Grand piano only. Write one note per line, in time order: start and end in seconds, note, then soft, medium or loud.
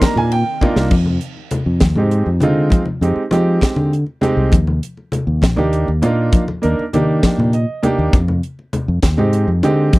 0.00 0.29 A#3 medium
0.00 0.30 D4 medium
0.00 0.30 D#4 medium
0.00 0.30 A#4 medium
0.00 0.17 A#5 loud
0.18 0.32 G#5 medium
0.32 0.74 G5 loud
0.61 0.91 A#3 medium
0.61 0.92 D4 medium
0.61 0.92 D#4 medium
0.61 0.92 F4 medium
1.97 2.26 G#3 medium
1.97 2.26 C4 medium
1.97 2.27 D#4 medium
1.97 2.27 G4 medium
2.42 2.81 G#3 medium
2.42 2.81 C4 medium
2.42 2.82 D#4 medium
2.42 2.82 F4 medium
3.02 3.21 G#3 medium
3.02 3.22 C4 medium
3.02 3.22 D#4 medium
3.02 3.22 G4 medium
3.31 3.90 G#3 medium
3.31 3.90 C4 medium
3.31 3.91 D#4 medium
3.31 3.91 G4 loud
4.21 4.52 G#3 loud
4.21 4.52 C4 medium
4.21 4.53 D#4 medium
4.21 4.53 G4 loud
5.56 5.86 A#3 medium
5.56 5.87 D4 medium
5.56 5.87 D#4 medium
5.56 5.88 G4 medium
6.02 6.41 A#3 medium
6.02 6.42 D4 medium
6.02 6.42 D#4 medium
6.02 6.42 F4 medium
6.62 6.82 A#3 medium
6.62 6.82 D4 medium
6.62 6.82 D#4 medium
6.62 6.83 A#4 medium
6.93 7.52 A#3 medium
6.93 7.52 D4 medium
6.93 7.52 D#4 medium
6.93 7.53 G4 medium
7.54 7.81 D#5 medium
7.83 8.13 A#3 medium
7.83 8.13 D4 medium
7.83 8.13 D#4 medium
7.83 8.14 G4 loud
7.83 8.11 G5 medium
9.17 9.47 G#3 medium
9.17 9.47 C4 medium
9.17 9.47 D#4 medium
9.17 9.48 G4 medium
9.63 9.99 G#3 medium
9.63 9.99 C4 medium
9.63 9.99 D#4 medium
9.63 9.99 G4 loud